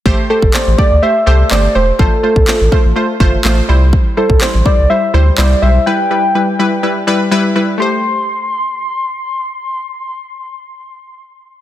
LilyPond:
<<
  \new Staff \with { instrumentName = "Soft synth lead" } { \time 4/4 \key a \minor \tempo 4 = 124 r8 a'8 c''8 d''8 e''8 e''8 d''8 c''8 | a'2. r4 | r8 a'8 c''8 d''8 e''8 c''8 d''8 e''8 | g''2. r4 |
c'''1~ | c'''1 | }
  \new Staff \with { instrumentName = "Synth pluck" } { \time 4/4 \key a \minor <a g' c''>16 r16 <a g' c''>16 r16 <a g' d''>16 r16 <a g' d''>16 r16 <a g' c''>16 r16 <a g' c''>16 r16 <a g' c''>16 r16 <a g' c''>16 r16 | <a f' c''>16 r16 <a f' c''>16 r16 <a f' c''>16 r16 <a f' c''>16 r16 <a f' c''>16 r16 <a f' c''>16 r16 <a f' c''>16 r16 <g e' c''>8~ | <g e' c''>8 <g e' c''>16 r16 <g e' c''>16 r16 <g e' c''>16 r16 <g e' c''>16 r16 <g e' c''>16 r16 <g e' c''>16 r16 <g e' c''>16 r16 | <g e' b'>16 r16 <g e' b'>16 r16 <g e' b'>16 r16 <g e' b'>16 r16 <g e' b'>16 r16 <g e' b'>16 r16 <g e' b'>16 r16 <g e' b'>16 r16 |
<a g' c''>1~ | <a g' c''>1 | }
  \new Staff \with { instrumentName = "Sub bass" } { \clef bass \time 4/4 \key a \minor a,,16 r8 g,,16 r16 a,,16 r16 d,16 r8 c,8 g,,8 e,,8 | a,,16 r8 c,16 r16 a,,16 r16 a,,16 r8 g,,8 a,,8 c,8~ | c,16 r8 c,16 r16 a,,16 r16 c,16 r8 d,8 c,8 b,,8 | r1 |
r1 | r1 | }
  \new DrumStaff \with { instrumentName = "Drums" } \drummode { \time 4/4 bd8. bd16 <hc sn>8 bd8 r4 <hc sn>4 | bd8. bd16 <hc sn>8 bd8 r8 bd8 <hc sn>4 | bd8. bd16 <hc sn>8 bd8 r4 <hc sn>4 | r4 r4 r4 r4 |
r4 r4 r4 r4 | r4 r4 r4 r4 | }
>>